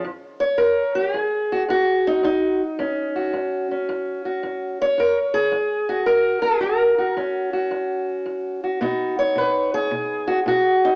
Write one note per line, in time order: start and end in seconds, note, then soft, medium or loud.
0.04 0.55 F#2 medium
0.40 1.14 C#5 medium
0.58 1.11 F#2 medium
0.58 0.95 A#4 medium
0.95 1.15 G4 medium
1.14 1.65 F#2 medium
1.14 2.05 G#4 medium
1.52 1.62 F#4 medium
1.69 2.20 F#2 medium
1.69 2.61 F#4 medium
2.07 2.23 D#4 medium
2.23 2.75 F#2 medium
2.23 3.34 D#4 medium
2.79 3.30 F#2 medium
2.79 3.71 C#4 soft
3.16 4.25 F#4 soft
3.33 3.85 F#2 medium
3.71 4.99 C#4 soft
3.89 4.40 F#2 medium
4.25 4.81 F#4 soft
4.43 4.95 F#2 medium
4.82 5.54 C#5 medium
4.98 5.49 F#2 medium
4.98 5.16 A#4 medium
5.34 6.06 G#4 medium
5.52 6.04 F#2 medium
5.89 6.41 F#4 medium
6.06 6.59 F#2 medium
6.06 6.59 A#4 medium
6.42 6.97 F#4 medium
6.60 7.14 F#2 medium
6.60 7.17 A#4 medium
6.98 7.53 F#4 soft
7.17 7.68 F#2 medium
7.17 8.82 C#4 soft
7.53 8.63 F#4 soft
7.71 8.23 F#2 medium
8.26 8.78 F#2 medium
8.64 8.82 F#4 soft
8.81 9.33 B2 medium
8.81 10.95 B3 soft
8.81 10.83 D#4 medium
8.81 9.18 F#4 soft
9.19 9.92 C#5 medium
9.36 9.87 B2 medium
9.36 9.74 B4 medium
9.74 10.83 G#4 loud
9.91 10.42 B2 medium
10.28 10.39 F#4 medium
10.46 10.95 B2 medium
10.46 10.95 F#4 medium
10.85 10.95 D#4 medium